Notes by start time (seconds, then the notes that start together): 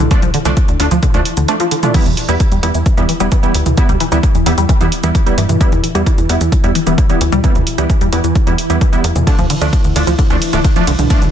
Already playing: E3 E4
0.00 D3
0.11 F3 A3 D4, kick, closed hi-hat, shaker
0.22 C2 F3, closed hi-hat, mid tom, shaker
0.34 D3, open hi-hat
0.45 C2 D3 F3 A3 D4, closed hi-hat, shaker
0.57 kick, closed hi-hat, shaker
0.68 D2 D3, closed hi-hat, shaker
0.80 D2 F3 A3 D4, open hi-hat
0.91 D2 F3, closed hi-hat, shaker
1.03 D3, kick, closed hi-hat, mid tom, shaker
1.14 D2 D3 F3 A3 D4, closed hi-hat, shaker
1.25 open hi-hat
1.37 D2 D3, closed hi-hat, shaker
1.48 F3 A3 D4, closed hi-hat, shaker
1.60 F3, closed hi-hat, shaker
1.71 D3, open hi-hat
1.83 D3 F3 A3 D4, closed hi-hat, mid tom, shaker
1.94 E3 G3 B3 E4, kick, closed hi-hat, crash, shaker
2.06 E2 E3, closed hi-hat, mid tom, shaker
2.17 open hi-hat
2.29 E2 E3 G3 B3 E4, closed hi-hat, shaker
2.40 E3, kick, closed hi-hat, shaker
2.52 E2 G3, closed hi-hat, shaker
2.63 E2 E3 G3 B3 E4, open hi-hat
2.75 E2 E3, closed hi-hat, shaker
2.86 kick, closed hi-hat, shaker
2.97 E2 E3 G3 B3 E4, closed hi-hat, shaker
3.09 E3, open hi-hat
3.20 E1 G3 B3 E4, closed hi-hat, shaker
3.32 E3, kick, closed hi-hat, shaker
3.43 E3 G3 B3 E4, closed hi-hat, shaker
3.54 D2, open hi-hat
3.66 D2 E3, closed hi-hat, mid tom, shaker
3.77 E3 G3 B3 E4, kick, closed hi-hat, shaker
3.89 D2 G3, closed hi-hat, mid tom, shaker
4.00 E3, open hi-hat
4.12 D2 E3 G3 B3 E4, closed hi-hat, shaker
4.23 kick, closed hi-hat, shaker
4.35 E2 E3, closed hi-hat, shaker
4.46 E2 E3 G3 B3 E4, open hi-hat
4.58 E2 G3, closed hi-hat, shaker
4.69 E3, kick, closed hi-hat, shaker
4.80 E2 E3 G3 B3 E4, closed hi-hat, shaker
4.92 open hi-hat
5.03 E2 E3 G3 B3 E4, closed hi-hat, shaker
5.15 E3, kick, closed hi-hat, shaker
5.26 G3 B3 E4, closed hi-hat, shaker
5.38 G2 E3, open hi-hat
5.49 G2 E3, closed hi-hat, mid tom, shaker
5.61 G3 B3 E4, kick, closed hi-hat, shaker
5.72 E2 E3, closed hi-hat, mid tom, shaker
5.83 E3, open hi-hat
5.95 E2 G3 B3 E4, closed hi-hat, shaker
6.06 E3, kick, closed hi-hat, shaker
6.18 E2 E3, closed hi-hat, shaker
6.29 E2 G3 B3 E4, open hi-hat
6.41 E2 E3, closed hi-hat, shaker
6.52 E3, kick, closed hi-hat, shaker
6.64 E2 G3 B3 E4, closed hi-hat, shaker
6.75 E3, open hi-hat
6.87 E1 E3 G3 B3 E4, closed hi-hat, shaker
6.98 kick, closed hi-hat, shaker
7.09 E3 G3 B3 E4, closed hi-hat, shaker
7.21 D2 E3, open hi-hat
7.32 D2 G3, closed hi-hat, mid tom, shaker
7.44 E3 G3 B3 E4, kick, closed hi-hat, shaker
7.55 D2 E3, closed hi-hat, mid tom, shaker
7.67 open hi-hat
7.78 D2 E3 G3 B3 E4, closed hi-hat, shaker
7.90 E3, kick, closed hi-hat, shaker
8.01 E2 G3, closed hi-hat, shaker
8.12 E2 E3 G3 B3 E4, open hi-hat
8.24 E2 E3, closed hi-hat, shaker
8.35 kick, closed hi-hat, shaker
8.47 E2 E3 G3 B3 E4, closed hi-hat, shaker
8.58 open hi-hat
8.70 E2 E3 G3 B3 E4, closed hi-hat, shaker
8.81 E3, kick, closed hi-hat, shaker
8.93 G3 B3 E4, closed hi-hat, shaker
9.04 E2 A#3, open hi-hat
9.16 E2 E3, closed hi-hat, mid tom, shaker
9.27 D3 F3 A3 D4, kick, closed hi-hat, ride, shaker
9.38 D2 F3, closed hi-hat, mid tom, shaker
9.50 D3, open hi-hat, ride
9.61 D2 D3 F3 A3 D4, closed hi-hat, shaker
9.73 kick, closed hi-hat, ride, shaker
9.84 D2 D3, closed hi-hat, shaker
9.96 D2 D3 F3 A3 D4, open hi-hat, ride
10.07 D2 F3, closed hi-hat, shaker
10.19 D3, kick, closed hi-hat, ride, shaker
10.30 D2 D3 F3 A3 D4, closed hi-hat, shaker
10.42 open hi-hat, ride
10.53 D1 D3 F3 A3 D4, closed hi-hat, shaker
10.64 D3, kick, closed hi-hat, ride, shaker
10.76 F3 A3 D4, closed hi-hat, shaker
10.87 C2 D3, open hi-hat, ride
10.99 C2 D3, closed hi-hat, mid tom, shaker
11.10 F3 A3 D4, kick, closed hi-hat, ride, shaker
11.22 C2 D3, closed hi-hat, mid tom, shaker